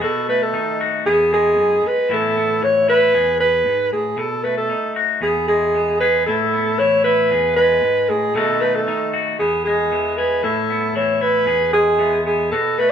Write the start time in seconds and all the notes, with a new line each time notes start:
Already playing: B3
0.01 B2 F#4 A4
0.29 A3 B4
0.42 A4
0.53 D#3 D#4
0.81 F#4
1.06 E2 B3 G#4
1.33 G#3 G#4
1.57 F#2
1.84 B4, muted clean electric guitar stroke
2.09 A2 E3 B3 E4
2.14 A4
2.36 B3
2.62 E3 C#5, muted clean electric guitar stroke
2.88 E4 B4
3.14 E2 G#4
3.40 B4, muted clean electric guitar stroke
3.65 G#2
3.92 A2 G#4
4.17 B2 A4, muted clean electric guitar stroke
4.43 A3 B4
4.57 A4
4.69 D#4, muted clean electric guitar stroke
4.96 F#4
5.21 E2 B3 G#4
5.48 G#3 G#4
5.74 B3, muted clean electric guitar stroke
6.00 G#4 B4
6.26 A2 E4 A4
6.53 B3
6.79 E3 E4 C#5
7.04 E4 B4
7.31 E2 G#4
7.56 G#3 B4
7.83 G#2
8.09 A2 G#4
8.34 B2 D#3 A3 D#4 F#4 A4
8.61 A3 B4
8.75 A4
8.87 D#3 D#4
9.13 F#4
9.39 E2 B3 G#4
9.65 G#3 G#4
9.92 E3 B3
10.17 G#4 B4
10.43 A2 E4 A4
10.70 B3
10.95 E3 E4 C#5
11.21 E4 B4
11.46 E2 G#4
11.73 G#3 G#4
11.98 E3 B3
12.26 B3 G#4
12.51 B2 F#4 A4
12.78 A3 B4